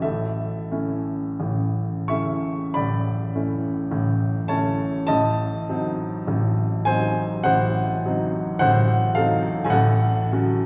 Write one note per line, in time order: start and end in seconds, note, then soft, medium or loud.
0.00 0.64 A1 medium
0.00 2.06 A4 medium
0.00 2.08 E5 medium
0.05 0.68 A2 medium
0.71 1.36 A3 soft
0.71 1.37 C#4 soft
0.71 1.37 E4 soft
1.40 2.08 A1 medium
1.40 2.09 A2 soft
2.08 2.70 A3 soft
2.08 2.71 C#4 soft
2.08 2.71 E4 soft
2.08 2.70 E5 medium
2.08 2.73 C#6 medium
2.74 3.34 A1 medium
2.74 3.33 A2 medium
2.74 4.46 D5 medium
2.74 4.50 B5 medium
3.35 3.88 A3 soft
3.35 3.89 C#4 soft
3.35 3.89 E4 soft
3.91 4.48 A1 medium
3.91 4.48 A2 medium
4.48 5.05 A3 soft
4.48 5.05 C#4 soft
4.48 5.05 E4 soft
4.48 5.04 C#5 medium
4.48 5.05 A5 medium
5.07 5.66 A1 medium
5.07 5.66 A2 medium
5.07 6.81 D#5 medium
5.07 6.84 A5 loud
5.69 6.23 F#3 soft
5.69 6.23 C4 medium
5.69 6.24 D#4 medium
6.27 6.84 A1 medium
6.27 6.84 A2 medium
6.85 7.41 F#3 medium
6.85 7.42 C4 soft
6.85 7.42 D#4 medium
6.85 7.41 C5 medium
6.85 7.44 G#5 loud
7.44 8.03 A1 medium
7.44 8.02 A2 medium
7.44 8.57 C5 medium
7.44 8.58 F#5 loud
8.05 8.58 F#3 medium
8.05 8.58 C4 medium
8.05 8.58 D#4 medium
8.59 9.15 A1 medium
8.59 9.15 A2 medium
8.59 9.12 C5 medium
8.59 9.16 F#5 loud
9.15 9.69 F#3 medium
9.15 9.70 C4 medium
9.15 9.70 D#4 medium
9.15 9.62 A4 medium
9.15 9.65 F5 loud
9.64 10.27 A2 medium
9.64 9.72 G#5 medium
9.70 10.30 A1 medium
9.70 10.66 A4 medium
9.70 10.66 F#5 loud
10.32 10.66 F#3 medium
10.32 10.66 C#4 medium
10.32 10.66 F#4 medium